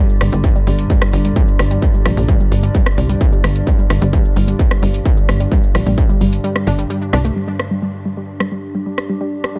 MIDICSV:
0, 0, Header, 1, 6, 480
1, 0, Start_track
1, 0, Tempo, 461538
1, 1897, Time_signature, 4, 2, 24, 8
1, 9976, End_track
2, 0, Start_track
2, 0, Title_t, "Ambient pad"
2, 0, Program_c, 0, 92
2, 0, Note_on_c, 0, 62, 75
2, 0, Note_on_c, 0, 67, 88
2, 0, Note_on_c, 0, 74, 87
2, 7644, Note_off_c, 0, 62, 0
2, 7656, Note_off_c, 0, 67, 0
2, 7657, Note_off_c, 0, 74, 0
2, 7657, Note_on_c, 0, 62, 77
2, 8014, Note_on_c, 0, 67, 73
2, 8313, Note_on_c, 0, 74, 72
2, 9976, Note_off_c, 0, 62, 0
2, 9976, Note_off_c, 0, 67, 0
2, 9976, Note_off_c, 0, 74, 0
2, 9976, End_track
3, 0, Start_track
3, 0, Title_t, "Synth arpeggio sound"
3, 0, Program_c, 1, 84
3, 216, Note_on_c, 1, 55, 76
3, 259, Note_off_c, 1, 55, 0
3, 337, Note_on_c, 1, 55, 77
3, 407, Note_off_c, 1, 55, 0
3, 577, Note_on_c, 1, 55, 77
3, 619, Note_off_c, 1, 55, 0
3, 696, Note_on_c, 1, 55, 78
3, 767, Note_off_c, 1, 55, 0
3, 937, Note_on_c, 1, 55, 84
3, 979, Note_off_c, 1, 55, 0
3, 1057, Note_on_c, 1, 55, 79
3, 1128, Note_off_c, 1, 55, 0
3, 1297, Note_on_c, 1, 55, 77
3, 1339, Note_off_c, 1, 55, 0
3, 1416, Note_on_c, 1, 55, 84
3, 1487, Note_off_c, 1, 55, 0
3, 1657, Note_on_c, 1, 55, 77
3, 1699, Note_off_c, 1, 55, 0
3, 1777, Note_on_c, 1, 55, 79
3, 1847, Note_off_c, 1, 55, 0
3, 2017, Note_on_c, 1, 55, 76
3, 2059, Note_off_c, 1, 55, 0
3, 2137, Note_on_c, 1, 55, 76
3, 2208, Note_off_c, 1, 55, 0
3, 2377, Note_on_c, 1, 55, 85
3, 2419, Note_off_c, 1, 55, 0
3, 2497, Note_on_c, 1, 55, 78
3, 2567, Note_off_c, 1, 55, 0
3, 2737, Note_on_c, 1, 55, 77
3, 2779, Note_off_c, 1, 55, 0
3, 2856, Note_on_c, 1, 55, 84
3, 2927, Note_off_c, 1, 55, 0
3, 3096, Note_on_c, 1, 55, 74
3, 3139, Note_off_c, 1, 55, 0
3, 3217, Note_on_c, 1, 55, 81
3, 3287, Note_off_c, 1, 55, 0
3, 3457, Note_on_c, 1, 55, 78
3, 3499, Note_off_c, 1, 55, 0
3, 3576, Note_on_c, 1, 55, 80
3, 3647, Note_off_c, 1, 55, 0
3, 3815, Note_on_c, 1, 55, 84
3, 3859, Note_off_c, 1, 55, 0
3, 3936, Note_on_c, 1, 55, 81
3, 4007, Note_off_c, 1, 55, 0
3, 4177, Note_on_c, 1, 55, 78
3, 4219, Note_off_c, 1, 55, 0
3, 4296, Note_on_c, 1, 55, 80
3, 4367, Note_off_c, 1, 55, 0
3, 4536, Note_on_c, 1, 55, 78
3, 4579, Note_off_c, 1, 55, 0
3, 4657, Note_on_c, 1, 55, 76
3, 4727, Note_off_c, 1, 55, 0
3, 4897, Note_on_c, 1, 55, 77
3, 4939, Note_off_c, 1, 55, 0
3, 5016, Note_on_c, 1, 55, 70
3, 5087, Note_off_c, 1, 55, 0
3, 5256, Note_on_c, 1, 55, 84
3, 5299, Note_off_c, 1, 55, 0
3, 5377, Note_on_c, 1, 55, 77
3, 5447, Note_off_c, 1, 55, 0
3, 5618, Note_on_c, 1, 55, 78
3, 5660, Note_off_c, 1, 55, 0
3, 5737, Note_on_c, 1, 55, 84
3, 5808, Note_off_c, 1, 55, 0
3, 5977, Note_on_c, 1, 55, 77
3, 6020, Note_off_c, 1, 55, 0
3, 6098, Note_on_c, 1, 55, 78
3, 6168, Note_off_c, 1, 55, 0
3, 6338, Note_on_c, 1, 55, 78
3, 6380, Note_off_c, 1, 55, 0
3, 6457, Note_on_c, 1, 55, 77
3, 6528, Note_off_c, 1, 55, 0
3, 6697, Note_on_c, 1, 55, 85
3, 6739, Note_off_c, 1, 55, 0
3, 6817, Note_on_c, 1, 55, 76
3, 6887, Note_off_c, 1, 55, 0
3, 6936, Note_on_c, 1, 62, 98
3, 7007, Note_off_c, 1, 62, 0
3, 7057, Note_on_c, 1, 55, 78
3, 7099, Note_off_c, 1, 55, 0
3, 7176, Note_on_c, 1, 55, 86
3, 7247, Note_off_c, 1, 55, 0
3, 7416, Note_on_c, 1, 62, 103
3, 7487, Note_off_c, 1, 62, 0
3, 7536, Note_on_c, 1, 57, 80
3, 7607, Note_off_c, 1, 57, 0
3, 7657, Note_on_c, 1, 55, 82
3, 7699, Note_off_c, 1, 55, 0
3, 7776, Note_on_c, 1, 55, 76
3, 7847, Note_off_c, 1, 55, 0
3, 8017, Note_on_c, 1, 55, 77
3, 8059, Note_off_c, 1, 55, 0
3, 8136, Note_on_c, 1, 55, 81
3, 8207, Note_off_c, 1, 55, 0
3, 8376, Note_on_c, 1, 55, 73
3, 8419, Note_off_c, 1, 55, 0
3, 8497, Note_on_c, 1, 55, 75
3, 8567, Note_off_c, 1, 55, 0
3, 8736, Note_on_c, 1, 55, 76
3, 8779, Note_off_c, 1, 55, 0
3, 8857, Note_on_c, 1, 55, 73
3, 8927, Note_off_c, 1, 55, 0
3, 9096, Note_on_c, 1, 55, 82
3, 9139, Note_off_c, 1, 55, 0
3, 9216, Note_on_c, 1, 55, 74
3, 9287, Note_off_c, 1, 55, 0
3, 9457, Note_on_c, 1, 55, 73
3, 9499, Note_off_c, 1, 55, 0
3, 9576, Note_on_c, 1, 55, 79
3, 9647, Note_off_c, 1, 55, 0
3, 9817, Note_on_c, 1, 55, 73
3, 9860, Note_off_c, 1, 55, 0
3, 9938, Note_on_c, 1, 55, 75
3, 9976, Note_off_c, 1, 55, 0
3, 9976, End_track
4, 0, Start_track
4, 0, Title_t, "Synth drone"
4, 0, Program_c, 2, 95
4, 0, Note_on_c, 2, 43, 78
4, 0, Note_on_c, 2, 50, 74
4, 7704, Note_off_c, 2, 43, 0
4, 7704, Note_off_c, 2, 50, 0
4, 9976, End_track
5, 0, Start_track
5, 0, Title_t, "Analog synth bass"
5, 0, Program_c, 3, 38
5, 216, Note_on_c, 3, 31, 102
5, 312, Note_off_c, 3, 31, 0
5, 337, Note_on_c, 3, 31, 97
5, 528, Note_off_c, 3, 31, 0
5, 696, Note_on_c, 3, 31, 91
5, 888, Note_off_c, 3, 31, 0
5, 1175, Note_on_c, 3, 31, 102
5, 1368, Note_off_c, 3, 31, 0
5, 1655, Note_on_c, 3, 31, 90
5, 1848, Note_off_c, 3, 31, 0
5, 2136, Note_on_c, 3, 34, 103
5, 2232, Note_off_c, 3, 34, 0
5, 2256, Note_on_c, 3, 34, 93
5, 2448, Note_off_c, 3, 34, 0
5, 2615, Note_on_c, 3, 31, 83
5, 2808, Note_off_c, 3, 31, 0
5, 3096, Note_on_c, 3, 36, 90
5, 3288, Note_off_c, 3, 36, 0
5, 3576, Note_on_c, 3, 31, 91
5, 3768, Note_off_c, 3, 31, 0
5, 4057, Note_on_c, 3, 31, 101
5, 4153, Note_off_c, 3, 31, 0
5, 4177, Note_on_c, 3, 31, 99
5, 4369, Note_off_c, 3, 31, 0
5, 4538, Note_on_c, 3, 31, 89
5, 4729, Note_off_c, 3, 31, 0
5, 5017, Note_on_c, 3, 31, 98
5, 5209, Note_off_c, 3, 31, 0
5, 5497, Note_on_c, 3, 31, 96
5, 5689, Note_off_c, 3, 31, 0
5, 5977, Note_on_c, 3, 34, 101
5, 6073, Note_off_c, 3, 34, 0
5, 6097, Note_on_c, 3, 34, 91
5, 6288, Note_off_c, 3, 34, 0
5, 6455, Note_on_c, 3, 31, 80
5, 6648, Note_off_c, 3, 31, 0
5, 6936, Note_on_c, 3, 31, 88
5, 7128, Note_off_c, 3, 31, 0
5, 7416, Note_on_c, 3, 36, 104
5, 7608, Note_off_c, 3, 36, 0
5, 9976, End_track
6, 0, Start_track
6, 0, Title_t, "Drums"
6, 98, Note_on_c, 9, 82, 33
6, 202, Note_off_c, 9, 82, 0
6, 217, Note_on_c, 9, 37, 92
6, 217, Note_on_c, 9, 46, 104
6, 321, Note_off_c, 9, 37, 0
6, 321, Note_off_c, 9, 46, 0
6, 338, Note_on_c, 9, 42, 64
6, 338, Note_on_c, 9, 82, 67
6, 442, Note_off_c, 9, 42, 0
6, 442, Note_off_c, 9, 82, 0
6, 456, Note_on_c, 9, 36, 112
6, 458, Note_on_c, 9, 42, 63
6, 458, Note_on_c, 9, 82, 55
6, 560, Note_off_c, 9, 36, 0
6, 562, Note_off_c, 9, 42, 0
6, 562, Note_off_c, 9, 82, 0
6, 578, Note_on_c, 9, 82, 33
6, 682, Note_off_c, 9, 82, 0
6, 697, Note_on_c, 9, 46, 104
6, 801, Note_off_c, 9, 46, 0
6, 817, Note_on_c, 9, 42, 63
6, 817, Note_on_c, 9, 82, 68
6, 921, Note_off_c, 9, 42, 0
6, 921, Note_off_c, 9, 82, 0
6, 936, Note_on_c, 9, 36, 120
6, 937, Note_on_c, 9, 42, 62
6, 937, Note_on_c, 9, 82, 56
6, 1040, Note_off_c, 9, 36, 0
6, 1041, Note_off_c, 9, 42, 0
6, 1041, Note_off_c, 9, 82, 0
6, 1057, Note_on_c, 9, 37, 97
6, 1057, Note_on_c, 9, 82, 33
6, 1161, Note_off_c, 9, 37, 0
6, 1161, Note_off_c, 9, 82, 0
6, 1177, Note_on_c, 9, 46, 104
6, 1281, Note_off_c, 9, 46, 0
6, 1297, Note_on_c, 9, 42, 65
6, 1297, Note_on_c, 9, 82, 67
6, 1401, Note_off_c, 9, 42, 0
6, 1401, Note_off_c, 9, 82, 0
6, 1416, Note_on_c, 9, 36, 116
6, 1416, Note_on_c, 9, 42, 64
6, 1416, Note_on_c, 9, 82, 54
6, 1520, Note_off_c, 9, 36, 0
6, 1520, Note_off_c, 9, 42, 0
6, 1520, Note_off_c, 9, 82, 0
6, 1537, Note_on_c, 9, 82, 34
6, 1641, Note_off_c, 9, 82, 0
6, 1657, Note_on_c, 9, 37, 97
6, 1657, Note_on_c, 9, 46, 103
6, 1761, Note_off_c, 9, 37, 0
6, 1761, Note_off_c, 9, 46, 0
6, 1778, Note_on_c, 9, 42, 64
6, 1778, Note_on_c, 9, 82, 66
6, 1882, Note_off_c, 9, 42, 0
6, 1882, Note_off_c, 9, 82, 0
6, 1896, Note_on_c, 9, 36, 115
6, 1898, Note_on_c, 9, 42, 61
6, 1898, Note_on_c, 9, 82, 56
6, 2000, Note_off_c, 9, 36, 0
6, 2002, Note_off_c, 9, 42, 0
6, 2002, Note_off_c, 9, 82, 0
6, 2018, Note_on_c, 9, 82, 31
6, 2122, Note_off_c, 9, 82, 0
6, 2137, Note_on_c, 9, 37, 92
6, 2137, Note_on_c, 9, 46, 102
6, 2241, Note_off_c, 9, 37, 0
6, 2241, Note_off_c, 9, 46, 0
6, 2258, Note_on_c, 9, 46, 60
6, 2258, Note_on_c, 9, 82, 66
6, 2362, Note_off_c, 9, 46, 0
6, 2362, Note_off_c, 9, 82, 0
6, 2376, Note_on_c, 9, 36, 113
6, 2378, Note_on_c, 9, 42, 62
6, 2378, Note_on_c, 9, 82, 54
6, 2480, Note_off_c, 9, 36, 0
6, 2482, Note_off_c, 9, 42, 0
6, 2482, Note_off_c, 9, 82, 0
6, 2498, Note_on_c, 9, 82, 34
6, 2602, Note_off_c, 9, 82, 0
6, 2618, Note_on_c, 9, 46, 99
6, 2722, Note_off_c, 9, 46, 0
6, 2738, Note_on_c, 9, 42, 64
6, 2738, Note_on_c, 9, 82, 68
6, 2842, Note_off_c, 9, 42, 0
6, 2842, Note_off_c, 9, 82, 0
6, 2857, Note_on_c, 9, 36, 109
6, 2858, Note_on_c, 9, 42, 63
6, 2858, Note_on_c, 9, 82, 54
6, 2961, Note_off_c, 9, 36, 0
6, 2962, Note_off_c, 9, 42, 0
6, 2962, Note_off_c, 9, 82, 0
6, 2978, Note_on_c, 9, 37, 95
6, 2978, Note_on_c, 9, 82, 33
6, 3082, Note_off_c, 9, 37, 0
6, 3082, Note_off_c, 9, 82, 0
6, 3098, Note_on_c, 9, 46, 102
6, 3202, Note_off_c, 9, 46, 0
6, 3218, Note_on_c, 9, 42, 62
6, 3218, Note_on_c, 9, 82, 67
6, 3322, Note_off_c, 9, 42, 0
6, 3322, Note_off_c, 9, 82, 0
6, 3337, Note_on_c, 9, 36, 118
6, 3338, Note_on_c, 9, 42, 63
6, 3338, Note_on_c, 9, 82, 55
6, 3441, Note_off_c, 9, 36, 0
6, 3442, Note_off_c, 9, 42, 0
6, 3442, Note_off_c, 9, 82, 0
6, 3459, Note_on_c, 9, 82, 34
6, 3563, Note_off_c, 9, 82, 0
6, 3578, Note_on_c, 9, 37, 93
6, 3578, Note_on_c, 9, 46, 100
6, 3682, Note_off_c, 9, 37, 0
6, 3682, Note_off_c, 9, 46, 0
6, 3698, Note_on_c, 9, 42, 64
6, 3698, Note_on_c, 9, 82, 68
6, 3802, Note_off_c, 9, 42, 0
6, 3802, Note_off_c, 9, 82, 0
6, 3817, Note_on_c, 9, 36, 116
6, 3818, Note_on_c, 9, 42, 64
6, 3818, Note_on_c, 9, 82, 54
6, 3921, Note_off_c, 9, 36, 0
6, 3922, Note_off_c, 9, 42, 0
6, 3922, Note_off_c, 9, 82, 0
6, 3938, Note_on_c, 9, 82, 32
6, 4042, Note_off_c, 9, 82, 0
6, 4058, Note_on_c, 9, 37, 89
6, 4058, Note_on_c, 9, 46, 102
6, 4162, Note_off_c, 9, 37, 0
6, 4162, Note_off_c, 9, 46, 0
6, 4179, Note_on_c, 9, 42, 66
6, 4179, Note_on_c, 9, 82, 66
6, 4283, Note_off_c, 9, 42, 0
6, 4283, Note_off_c, 9, 82, 0
6, 4297, Note_on_c, 9, 36, 114
6, 4299, Note_on_c, 9, 42, 63
6, 4299, Note_on_c, 9, 82, 53
6, 4401, Note_off_c, 9, 36, 0
6, 4403, Note_off_c, 9, 42, 0
6, 4403, Note_off_c, 9, 82, 0
6, 4419, Note_on_c, 9, 82, 32
6, 4523, Note_off_c, 9, 82, 0
6, 4538, Note_on_c, 9, 46, 99
6, 4642, Note_off_c, 9, 46, 0
6, 4660, Note_on_c, 9, 42, 66
6, 4660, Note_on_c, 9, 82, 64
6, 4764, Note_off_c, 9, 42, 0
6, 4764, Note_off_c, 9, 82, 0
6, 4777, Note_on_c, 9, 36, 113
6, 4779, Note_on_c, 9, 42, 67
6, 4779, Note_on_c, 9, 82, 54
6, 4881, Note_off_c, 9, 36, 0
6, 4883, Note_off_c, 9, 42, 0
6, 4883, Note_off_c, 9, 82, 0
6, 4900, Note_on_c, 9, 37, 90
6, 4900, Note_on_c, 9, 82, 33
6, 5004, Note_off_c, 9, 37, 0
6, 5004, Note_off_c, 9, 82, 0
6, 5019, Note_on_c, 9, 46, 100
6, 5123, Note_off_c, 9, 46, 0
6, 5139, Note_on_c, 9, 42, 67
6, 5139, Note_on_c, 9, 82, 68
6, 5243, Note_off_c, 9, 42, 0
6, 5243, Note_off_c, 9, 82, 0
6, 5257, Note_on_c, 9, 36, 116
6, 5259, Note_on_c, 9, 42, 65
6, 5259, Note_on_c, 9, 82, 54
6, 5361, Note_off_c, 9, 36, 0
6, 5363, Note_off_c, 9, 42, 0
6, 5363, Note_off_c, 9, 82, 0
6, 5380, Note_on_c, 9, 82, 33
6, 5484, Note_off_c, 9, 82, 0
6, 5499, Note_on_c, 9, 37, 91
6, 5499, Note_on_c, 9, 46, 100
6, 5603, Note_off_c, 9, 37, 0
6, 5603, Note_off_c, 9, 46, 0
6, 5620, Note_on_c, 9, 42, 64
6, 5620, Note_on_c, 9, 82, 65
6, 5724, Note_off_c, 9, 42, 0
6, 5724, Note_off_c, 9, 82, 0
6, 5737, Note_on_c, 9, 36, 113
6, 5739, Note_on_c, 9, 42, 65
6, 5739, Note_on_c, 9, 82, 52
6, 5841, Note_off_c, 9, 36, 0
6, 5843, Note_off_c, 9, 42, 0
6, 5843, Note_off_c, 9, 82, 0
6, 5859, Note_on_c, 9, 82, 31
6, 5963, Note_off_c, 9, 82, 0
6, 5979, Note_on_c, 9, 37, 86
6, 5979, Note_on_c, 9, 46, 104
6, 6083, Note_off_c, 9, 37, 0
6, 6083, Note_off_c, 9, 46, 0
6, 6100, Note_on_c, 9, 46, 61
6, 6100, Note_on_c, 9, 82, 63
6, 6204, Note_off_c, 9, 46, 0
6, 6204, Note_off_c, 9, 82, 0
6, 6217, Note_on_c, 9, 36, 113
6, 6219, Note_on_c, 9, 42, 67
6, 6219, Note_on_c, 9, 82, 53
6, 6321, Note_off_c, 9, 36, 0
6, 6323, Note_off_c, 9, 42, 0
6, 6323, Note_off_c, 9, 82, 0
6, 6340, Note_on_c, 9, 82, 32
6, 6444, Note_off_c, 9, 82, 0
6, 6460, Note_on_c, 9, 46, 101
6, 6564, Note_off_c, 9, 46, 0
6, 6580, Note_on_c, 9, 42, 68
6, 6580, Note_on_c, 9, 82, 61
6, 6684, Note_off_c, 9, 42, 0
6, 6684, Note_off_c, 9, 82, 0
6, 6699, Note_on_c, 9, 42, 69
6, 6699, Note_on_c, 9, 82, 53
6, 6803, Note_off_c, 9, 42, 0
6, 6803, Note_off_c, 9, 82, 0
6, 6819, Note_on_c, 9, 37, 89
6, 6819, Note_on_c, 9, 82, 32
6, 6923, Note_off_c, 9, 37, 0
6, 6923, Note_off_c, 9, 82, 0
6, 6939, Note_on_c, 9, 46, 102
6, 7043, Note_off_c, 9, 46, 0
6, 7060, Note_on_c, 9, 42, 69
6, 7060, Note_on_c, 9, 82, 64
6, 7164, Note_off_c, 9, 42, 0
6, 7164, Note_off_c, 9, 82, 0
6, 7179, Note_on_c, 9, 42, 67
6, 7179, Note_on_c, 9, 82, 54
6, 7283, Note_off_c, 9, 42, 0
6, 7283, Note_off_c, 9, 82, 0
6, 7300, Note_on_c, 9, 82, 33
6, 7404, Note_off_c, 9, 82, 0
6, 7418, Note_on_c, 9, 37, 88
6, 7418, Note_on_c, 9, 46, 101
6, 7522, Note_off_c, 9, 37, 0
6, 7522, Note_off_c, 9, 46, 0
6, 7539, Note_on_c, 9, 42, 68
6, 7539, Note_on_c, 9, 82, 62
6, 7643, Note_off_c, 9, 42, 0
6, 7643, Note_off_c, 9, 82, 0
6, 7898, Note_on_c, 9, 37, 84
6, 8002, Note_off_c, 9, 37, 0
6, 8739, Note_on_c, 9, 37, 85
6, 8843, Note_off_c, 9, 37, 0
6, 9338, Note_on_c, 9, 37, 85
6, 9442, Note_off_c, 9, 37, 0
6, 9818, Note_on_c, 9, 37, 88
6, 9922, Note_off_c, 9, 37, 0
6, 9976, End_track
0, 0, End_of_file